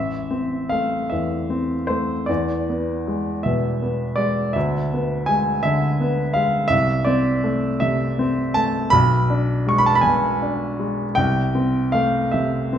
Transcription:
Already playing: A1 E5
0.31 C4
0.69 A3 F5
1.10 E2 E5
1.50 C4
1.87 A3 C5
2.26 E2 D5
2.69 B3
3.08 G#3
3.43 B2 E5
3.82 B3
4.16 G#3 D5
4.53 D2 E5
4.93 B3
5.26 G#3 G#5
5.63 D3 E5
6.00 B3
6.34 G#3 F5
6.68 C2 E5
7.05 C4 D5
7.44 A3
7.80 C3 E5
8.19 C4
8.54 A3 A5
8.90 B1 B5
9.30 D4
9.67 G#3 C#6
9.78 B5
9.86 A5
9.95 B5
10.01 B2 G#5
10.42 D4
10.79 G#3
11.15 C2 G5
11.55 C4
11.92 A3 F5
12.31 C3 E5
12.73 C4

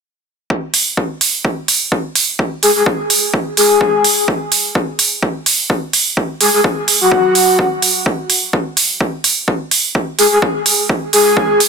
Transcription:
0.50 kick
0.74 open hi-hat
0.97 kick
1.21 open hi-hat
1.45 kick
1.68 open hi-hat
1.92 kick
2.15 open hi-hat
2.39 kick
2.63 G#4, open hi-hat
2.76 G#4
2.86 kick
3.10 open hi-hat
3.34 kick
3.57 G#4, open hi-hat
3.81 kick
4.04 open hi-hat
4.28 kick
4.52 open hi-hat
4.75 kick
4.99 open hi-hat
5.23 kick
5.46 open hi-hat
5.70 kick
5.93 open hi-hat
6.17 kick
6.41 G#4, open hi-hat
6.54 G#4
6.64 kick
6.88 open hi-hat
7.01 F#4
7.12 kick
7.35 open hi-hat
7.59 kick
7.82 open hi-hat
8.06 kick
8.30 open hi-hat
8.53 kick
8.77 open hi-hat
9.01 kick
9.24 open hi-hat
9.48 kick
9.71 open hi-hat
9.95 kick
10.19 G#4, open hi-hat
10.32 G#4
10.42 kick
10.66 open hi-hat
10.89 kick
11.13 G#4, open hi-hat
11.37 kick
11.60 open hi-hat

